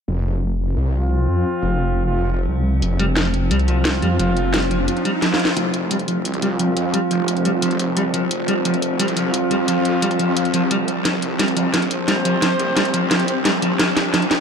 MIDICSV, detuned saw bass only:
0, 0, Header, 1, 2, 480
1, 0, Start_track
1, 0, Tempo, 342857
1, 112, Time_signature, 4, 2, 24, 8
1, 20161, End_track
2, 0, Start_track
2, 0, Title_t, "Detuned saw bass"
2, 0, Program_c, 0, 39
2, 113, Note_on_c, 0, 29, 93
2, 333, Note_off_c, 0, 29, 0
2, 353, Note_on_c, 0, 29, 96
2, 1053, Note_off_c, 0, 29, 0
2, 1072, Note_on_c, 0, 36, 100
2, 1773, Note_off_c, 0, 36, 0
2, 1793, Note_on_c, 0, 41, 94
2, 2013, Note_off_c, 0, 41, 0
2, 2273, Note_on_c, 0, 29, 98
2, 3453, Note_off_c, 0, 29, 0
2, 3473, Note_on_c, 0, 36, 94
2, 3934, Note_off_c, 0, 36, 0
2, 3953, Note_on_c, 0, 29, 94
2, 4173, Note_off_c, 0, 29, 0
2, 4192, Note_on_c, 0, 29, 94
2, 4893, Note_off_c, 0, 29, 0
2, 4913, Note_on_c, 0, 36, 94
2, 5614, Note_off_c, 0, 36, 0
2, 5633, Note_on_c, 0, 41, 97
2, 5853, Note_off_c, 0, 41, 0
2, 5872, Note_on_c, 0, 29, 93
2, 6832, Note_off_c, 0, 29, 0
2, 7792, Note_on_c, 0, 29, 99
2, 8013, Note_off_c, 0, 29, 0
2, 8032, Note_on_c, 0, 29, 101
2, 8733, Note_off_c, 0, 29, 0
2, 8752, Note_on_c, 0, 36, 99
2, 9453, Note_off_c, 0, 36, 0
2, 9472, Note_on_c, 0, 41, 97
2, 9693, Note_off_c, 0, 41, 0
2, 9952, Note_on_c, 0, 29, 98
2, 11133, Note_off_c, 0, 29, 0
2, 11152, Note_on_c, 0, 36, 96
2, 11613, Note_off_c, 0, 36, 0
2, 11633, Note_on_c, 0, 29, 98
2, 11854, Note_off_c, 0, 29, 0
2, 11872, Note_on_c, 0, 29, 101
2, 12573, Note_off_c, 0, 29, 0
2, 12593, Note_on_c, 0, 36, 100
2, 13294, Note_off_c, 0, 36, 0
2, 13313, Note_on_c, 0, 41, 96
2, 13533, Note_off_c, 0, 41, 0
2, 13552, Note_on_c, 0, 41, 97
2, 14733, Note_off_c, 0, 41, 0
2, 14753, Note_on_c, 0, 36, 94
2, 15214, Note_off_c, 0, 36, 0
2, 15233, Note_on_c, 0, 36, 94
2, 15454, Note_off_c, 0, 36, 0
2, 15472, Note_on_c, 0, 36, 96
2, 15693, Note_off_c, 0, 36, 0
2, 15712, Note_on_c, 0, 36, 98
2, 16413, Note_off_c, 0, 36, 0
2, 16432, Note_on_c, 0, 34, 99
2, 17133, Note_off_c, 0, 34, 0
2, 17152, Note_on_c, 0, 36, 94
2, 17373, Note_off_c, 0, 36, 0
2, 17632, Note_on_c, 0, 36, 99
2, 18813, Note_off_c, 0, 36, 0
2, 18832, Note_on_c, 0, 34, 99
2, 19293, Note_off_c, 0, 34, 0
2, 19313, Note_on_c, 0, 36, 96
2, 19533, Note_off_c, 0, 36, 0
2, 19553, Note_on_c, 0, 36, 97
2, 20161, Note_off_c, 0, 36, 0
2, 20161, End_track
0, 0, End_of_file